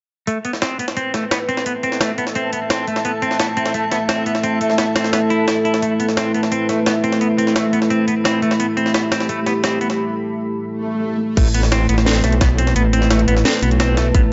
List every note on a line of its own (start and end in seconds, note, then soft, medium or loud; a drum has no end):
0.27 11.33 A3 medium
0.27 0.37 A3 medium
0.27 11.33 E4 medium
0.27 3.04 B4 medium
0.27 closed hi-hat medium
0.44 0.51 B3 medium
0.44 9.98 A4 medium
0.44 closed hi-hat medium
0.53 snare soft
0.59 0.77 C4 medium
0.59 9.98 E5 medium
0.59 6.93 A5 medium
0.59 snare loud
0.59 closed hi-hat medium
0.79 0.85 B3 medium
0.79 closed hi-hat medium
0.88 snare medium
0.97 1.12 C4 loud
0.97 closed hi-hat medium
1.14 1.24 A3 medium
1.14 snare soft
1.14 closed hi-hat medium
1.31 1.37 B3 medium
1.31 snare loud
1.31 closed hi-hat medium
1.49 1.63 C4 loud
1.49 closed hi-hat medium
1.57 snare soft
1.66 1.72 B3 medium
1.66 closed hi-hat medium
1.83 1.98 C4 medium
1.83 closed hi-hat medium
1.92 snare soft
2.01 2.11 A3 medium
2.01 snare loud
2.01 closed hi-hat medium
2.18 2.24 B3 medium
2.18 closed hi-hat medium
2.27 snare soft
2.35 2.50 C4 loud
2.35 closed hi-hat medium
2.53 2.59 B3 medium
2.53 closed hi-hat medium
2.70 2.85 C4 loud
2.70 snare loud
2.70 closed hi-hat medium
2.87 2.97 A3 medium
2.87 closed hi-hat medium
2.96 snare soft
3.05 3.11 B3 medium
3.05 5.81 E5 medium
3.05 closed hi-hat medium
3.22 3.37 C4 medium
3.22 closed hi-hat medium
3.31 snare soft
3.40 3.45 B3 medium
3.40 snare loud
3.40 closed hi-hat medium
3.57 3.72 C4 medium
3.57 closed hi-hat medium
3.66 snare medium
3.74 3.84 A3 medium
3.74 closed hi-hat medium
3.92 3.97 B3 medium
3.92 snare soft
3.92 closed hi-hat medium
4.09 4.24 C4 loud
4.09 snare loud
4.09 closed hi-hat medium
4.26 4.32 B3 medium
4.26 closed hi-hat medium
4.35 snare soft
4.43 4.58 C4 loud
4.43 closed hi-hat medium
4.61 4.71 A3 medium
4.61 closed hi-hat medium
4.70 snare soft
4.78 4.84 B3 medium
4.78 snare loud
4.78 closed hi-hat medium
4.96 5.10 C4 medium
4.96 snare loud
4.96 closed hi-hat medium
5.04 snare soft
5.13 5.19 B3 medium
5.13 snare loud
5.13 closed hi-hat medium
5.30 5.45 E4 loud
5.30 closed hi-hat medium
5.48 5.57 E4 medium
5.48 snare loud
5.48 closed hi-hat medium
5.65 5.80 E4 medium
5.65 closed hi-hat medium
5.74 snare soft
5.82 5.92 A3 medium
5.82 8.59 B4 medium
5.82 closed hi-hat medium
6.00 6.06 B3 medium
6.00 closed hi-hat medium
6.08 snare soft
6.17 6.32 C4 medium
6.17 snare loud
6.17 closed hi-hat medium
6.34 6.40 B3 medium
6.34 closed hi-hat medium
6.43 snare medium
6.52 6.67 C4 loud
6.52 closed hi-hat medium
6.69 6.79 A3 medium
6.69 snare soft
6.69 closed hi-hat medium
6.82 9.98 B5 medium
6.82 snare loud
6.82 closed hi-hat medium
6.86 6.92 B3 medium
7.04 7.19 C4 loud
7.04 closed hi-hat medium
7.12 snare soft
7.21 7.27 B3 medium
7.21 closed hi-hat medium
7.38 7.53 C4 loud
7.38 closed hi-hat medium
7.47 snare soft
7.56 7.66 A3 medium
7.56 snare loud
7.56 closed hi-hat medium
7.73 7.79 B3 medium
7.73 closed hi-hat medium
7.82 snare soft
7.90 8.05 C4 loud
7.90 closed hi-hat medium
8.08 8.14 B3 medium
8.08 closed hi-hat medium
8.25 8.40 C4 loud
8.25 snare loud
8.25 closed hi-hat medium
8.42 8.52 A3 medium
8.42 closed hi-hat medium
8.51 snare medium
8.60 8.66 B3 medium
8.60 11.36 G4 medium
8.60 closed hi-hat medium
8.77 8.92 C4 medium
8.77 closed hi-hat medium
8.86 snare soft
8.94 9.00 B3 medium
8.94 snare loud
8.94 closed hi-hat medium
9.12 9.26 C4 medium
9.12 snare loud
9.12 closed hi-hat medium
9.20 snare medium
9.29 9.39 A3 medium
9.29 closed hi-hat medium
9.46 9.52 B3 medium
9.46 snare soft
9.46 closed hi-hat medium
9.64 9.79 C4 loud
9.64 snare loud
9.64 closed hi-hat medium
9.81 9.87 B3 medium
9.81 closed hi-hat medium
9.90 snare soft
10.68 swell medium
11.37 11.88 A1 loud
11.37 14.33 A3 medium
11.37 11.47 A3 medium
11.37 14.33 E4 medium
11.37 14.33 B4 medium
11.37 kick loud
11.37 closed hi-hat medium
11.37 crash medium
11.54 11.60 B3 medium
11.54 closed hi-hat medium
11.63 14.33 A5 medium
11.63 snare soft
11.72 11.87 C4 loud
11.72 snare loud
11.72 closed hi-hat medium
11.72 closed hi-hat loud
11.89 12.22 A1 medium
11.89 11.95 B3 medium
11.89 closed hi-hat medium
11.98 snare medium
12.06 12.21 C4 loud
12.06 snare loud
12.06 closed hi-hat loud
12.06 closed hi-hat medium
12.15 closed hi-hat soft
12.24 12.74 B1 loud
12.24 12.34 A3 medium
12.24 snare medium
12.24 closed hi-hat medium
12.32 closed hi-hat soft
12.41 12.47 B3 medium
12.41 kick loud
12.41 snare loud
12.41 closed hi-hat medium
12.41 closed hi-hat loud
12.58 12.73 C4 loud
12.58 closed hi-hat medium
12.67 snare soft
12.76 13.26 A1 medium
12.76 12.82 B3 medium
12.76 closed hi-hat medium
12.93 13.08 C4 loud
12.93 closed hi-hat medium
13.02 snare soft
13.10 13.20 A3 medium
13.10 snare loud
13.10 closed hi-hat medium
13.10 closed hi-hat loud
13.19 closed hi-hat soft
13.28 13.44 A1 loud
13.28 13.34 B3 medium
13.28 closed hi-hat medium
13.36 snare soft
13.45 13.60 C4 loud
13.45 snare loud
13.45 closed hi-hat medium
13.54 closed hi-hat soft
13.62 14.13 B1 loud
13.62 13.69 B3 medium
13.62 closed hi-hat medium
13.71 closed hi-hat soft
13.80 13.95 C4 loud
13.80 snare loud
13.80 closed hi-hat medium
13.97 14.07 A3 medium
13.97 snare loud
13.97 closed hi-hat medium
14.15 14.33 A1 medium
14.15 14.21 B3 medium
14.15 kick loud
14.15 closed hi-hat medium